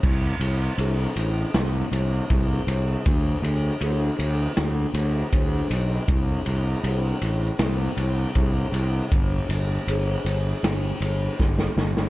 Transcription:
<<
  \new Staff \with { instrumentName = "Fingered electric bass" } { \clef bass \time 4/4 \key c \lydian \tempo 4 = 79 c,8 c,8 c,8 a,,8 c,8 c,8 c,8 c,8 | d,8 d,8 d,8 d,8 d,8 d,8 d,8 b,,8 | c,8 c,8 c,8 a,,8 c,8 c,8 c,8 c,8 | g,,8 g,,8 g,,8 g,,8 g,,8 g,,8 g,,8 g,,8 | }
  \new DrumStaff \with { instrumentName = "Drums" } \drummode { \time 4/4 <cymc bd>8 cymr8 cymr8 cymr8 <cymr sn>8 cymr8 <bd cymr>8 cymr8 | <bd cymr>8 cymr8 cymr8 cymr8 <cymr sn>8 cymr8 <bd cymr>8 cymr8 | <bd cymr>8 cymr8 cymr8 cymr8 <cymr sn>8 cymr8 <bd cymr>8 cymr8 | <bd cymr>8 cymr8 cymr8 cymr8 <cymr sn>8 cymr8 <bd sn>16 sn16 sn16 sn16 | }
>>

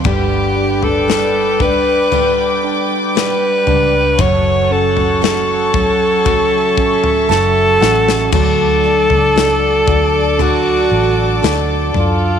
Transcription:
<<
  \new Staff \with { instrumentName = "String section" } { \time 4/4 \key d \major \tempo 4 = 58 << { <b' d'' d'''>1 | <a' cis'' cis'''>1 | <a' d'' d'''>1 | } \\ { g''1 | fis''2 e''2 | a''1 | } >> }
  \new Staff \with { instrumentName = "Alto saxophone" } { \time 4/4 \key d \major g'8. a'8. b'4 r8 b'4 | cis''8 a'8 a'2 a'4 | a'2 fis'4~ fis'16 r16 f'8 | }
  \new Staff \with { instrumentName = "Tine electric piano" } { \time 4/4 \key d \major g8 d'8 g8 d'8 g8 d'8 g8 d'8 | fis8 cis'8 fis'8 fis8 fis'8 cis'8 <fis a''>8 <cis' fis''>8 | fis4 <d' fis' a'>4 <d' fis' a'>4 <d' a'>4 | }
  \new Staff \with { instrumentName = "Steel-string acoustic guitar" } { \time 4/4 \key d \major <g, d g b d' g'>4 <g b d' g'>8 <g b d' g'>8 <g, d g b d' g'>4 <g b d' g'>8 <g b d' g'>8 | <fis, cis fis a cis' fis'>4 <fis a cis' fis'>8 <fis a cis' fis'>8 <fis, cis fis a cis' fis'>4 <fis a cis' fis'>8 <fis a cis' fis'>8 | <d fis a d' fis'>8 <a d' fis'>8 <fis a d' fis'>8 <a d' fis'>8 <d fis a d' fis'>4 <fis a d' fis'>8 <a d'>8 | }
  \new Staff \with { instrumentName = "Fingered electric bass" } { \clef bass \time 4/4 \key d \major g,,2.~ g,,8 cis,8 | fis,,2. fis,,8 a,,8 | d,8. cis,8. d,4 a,,8 d,8 fis,8 | }
  \new DrumStaff \with { instrumentName = "Drums" } \drummode { \time 4/4 <bd tomfh>8. tomfh16 sn8 <bd tomfh>8 tomfh4 sn8 tomfh8 | <bd tomfh>8. tomfh16 sn8 <bd tomfh>8 <bd tomfh>8 bd16 tomfh16 sn8 sn16 sn16 | <cymc bd tomfh>8. tomfh16 sn8 <bd tomfh>8 tomfh4 sn8 tomfh8 | }
>>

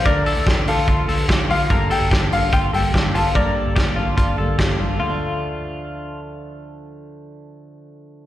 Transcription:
<<
  \new Staff \with { instrumentName = "Upright piano" } { \time 4/4 \key d \minor \tempo 4 = 145 d''4 r8 a'4. r8 f''8~ | f''8 g''4 f''8 g''8 g''4 a''8 | d''2. r4 | r1 |
r1 | }
  \new Staff \with { instrumentName = "Clean electric guitar" } { \time 4/4 \key d \minor bes'8 a'8 g'8 f'8 f'8 a'8 g'8 f'8 | bes'8 a'8 g'8 f'8 f'8 a'8 g'8 f'8 | bes'8 a'8 g'8 f'8 f'8 a'8 g'8 f'8 | f'2. r4 |
r1 | }
  \new Staff \with { instrumentName = "Steel-string acoustic guitar" } { \time 4/4 \key d \minor <d f a d'>4. <d f a d'>4 <d f a d'>8 <d f a d'>8 <d f a d'>8 | <g, d g bes d' a'>4. <g bes d' a'>4 <g bes d' a'>8 <g bes d' a'>8 <g bes d' a'>8 | <g, d g bes d' a'>4. <g bes d' a'>4 <g bes d' a'>8 <g bes d' a'>8 <g bes d' a'>8 | <d f a d'>1~ |
<d f a d'>1 | }
  \new Staff \with { instrumentName = "Picked electric bass" } { \clef bass \time 4/4 \key d \minor d,8 r16 d,16 d,8 d,8 d,8 d,8 d,8 d,8 | g,,8 r16 g,,16 r8 g,,8 g,,8 g,,8 g,,8 g,,8 | g,,8 r16 g,,16 g,,8 g,,8 g,,8 g,,8 g,,8 g,,8 | d,1~ |
d,1 | }
  \new DrumStaff \with { instrumentName = "Drums" } \drummode { \time 4/4 <hh bd>8 hho8 <hh bd sn>8 hho8 <hh bd>8 hho8 <hh bd sn>8 hho8 | <hh bd>8 hho8 <hh bd sn>8 hho8 <hh bd>8 hho8 <bd sn>8 hho8 | <hh bd>4 <hh bd sn>4 <hh bd>4 <hh bd sn>4 | r4 r4 r4 r4 |
r4 r4 r4 r4 | }
>>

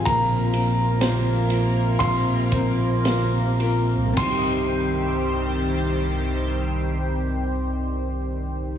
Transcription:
<<
  \new Staff \with { instrumentName = "Grand piano" } { \time 4/4 \key c \minor \tempo 4 = 52 bes''2 c'''4. r8 | c'''1 | }
  \new Staff \with { instrumentName = "Tine electric piano" } { \time 4/4 \key c \minor bes8 f'8 c''8 f'8 f''8 c''8 f''8 f'8 | <c, g, c' ees' g' ees''>1 | }
  \new Staff \with { instrumentName = "Steel-string acoustic guitar" } { \time 4/4 \key c \minor <bes c' f' bes'>8 <c' f' bes'>8 <bes c' f' bes'>4. <c' f' bes'>8 <bes c' f' bes'>8 <c' f' bes'>8 | <c g c' ees' g'>1 | }
  \new Staff \with { instrumentName = "Analog synth pad" } { \time 4/4 \key c \minor <c f bes f' bes'>1 | <ees g c' g' c''>1 | }
  \new Staff \with { instrumentName = "Fingered electric bass" } { \clef bass \time 4/4 \key c \minor bes,,2 bes,,2 | c,1 | }
  \new DrumStaff \with { instrumentName = "Drums" } \drummode { \time 4/4 <bd cymr>8 cymr8 <cymr sn>8 cymr8 <bd cymr>8 <bd cymr>8 <cymr sn>8 cymr8 | <cymc bd>4 r4 r4 r4 | }
>>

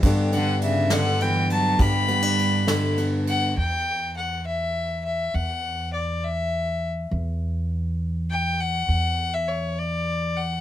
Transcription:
<<
  \new Staff \with { instrumentName = "Fiddle" } { \time 6/8 \key e \dorian \tempo 4. = 68 r8 fis''8 e''8 fis''8 g''8 a''8 | b''2 r8 fis''8 | g''4 fis''8 e''4 e''8 | fis''4 d''8 e''4 r8 |
r2 g''8 fis''8~ | fis''8. e''16 cis''8 d''4 fis''8 | }
  \new Staff \with { instrumentName = "Steel-string acoustic guitar" } { \time 6/8 \key e \dorian << { <d b d' g'>8 d'4. b4 | g'8 b16 d'4~ d'16 b4 | r2. | r2. |
r2. | r2. | } \\ { g,4. d4. | g,4. d4. | r2. | r2. |
r2. | r2. | } >> }
  \new Staff \with { instrumentName = "Cello" } { \clef bass \time 6/8 \key e \dorian r8 d8 cis8 d8 e8 fis8 | g2 r4 | r2. | r2. |
r2. | r2. | }
  \new Staff \with { instrumentName = "Upright bass" } { \clef bass \time 6/8 \key e \dorian g,2. | g,2. | e,2. | e,2. |
e,2. | e,2. | }
  \new DrumStaff \with { instrumentName = "Drums" } \drummode { \time 6/8 <bd cymr>8 cymr8 cymr8 <cymr sn>8 cymr8 cymr8 | <bd cymr>8 cymr8 cymr8 <cymr sn>8 cymr8 cymr8 | r4. r4. | r4. r4. |
r4. r4. | r4. r4. | }
>>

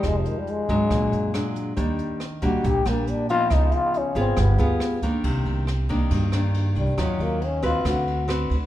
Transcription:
<<
  \new Staff \with { instrumentName = "Trombone" } { \time 4/4 \key ees \major \tempo 4 = 138 aes16 c16 ees16 g16 aes2. | r4. ges'8 g'8 bes8 d'8 f'8 | ees'8 f'8 des'8 c'8 b4.~ b16 r16 | \key c \minor r2. r8 g8 |
ges8 bes8 des'8 f'8 fis'4 r4 | }
  \new Staff \with { instrumentName = "Nylon-string guitar" } { \time 4/4 \key ees \major << { <aes ees' g'>4. <ges aes d'>4. <fis aes d'>4 | <g bes d'>4 r8 <g bes d'>4 <g bes d'>4 <f ces' ees'>8~ | <f ces' ees'>4. <ces' f' aes'>4 <b f' aes'>4 <ees bes d'>8~ | \key c \minor <ees bes d'>4 r8 <ees bes d'>4 <ees bes d'>4. |
<ges des' f'>4 r8 <c' ges' b'>4. <c' fis' b'>8 r8 | } \\ { f2 bes,2 | ees2 bes,2 | des2 g2 | c2 g,2 |
ees2 d2 | } >> }
  \new Staff \with { instrumentName = "Upright bass" } { \clef bass \time 4/4 \key ees \major f,,8 r4 aes,,8 bes,,8 fis,8 r4 | ees,8 r4 bes,,8 bes,,8 bes,,8 r4 | des,8 r4 aes,,8 g,,8 d,8 r4 | \key c \minor c,8 c,4. g,4. c,16 r16 |
ees,8 ees,4. d,4. d,16 r16 | }
  \new DrumStaff \with { instrumentName = "Drums" } \drummode { \time 4/4 <hh bd ss>8 hh8 hh8 <hh bd>8 <hh bd ss>8 hh8 <hh ss>8 hh8 | <hh bd>8 hh8 <hh ss>8 <hh bd>8 <hh bd>8 <hh ss>8 hh8 hh8 | <hh bd ss>8 hh8 hh8 hh8 <hh bd ss>8 hh8 <hh ss>8 <hh bd>8 | <bd cymr>8 cymr8 <cymr ss>8 <bd cymr>8 <bd cymr>8 <cymr ss>8 cymr8 cymr8 |
<bd cymr ss>8 cymr8 cymr8 <bd cymr>8 <bd cymr ss>8 cymr8 <cymr ss>8 cymr8 | }
>>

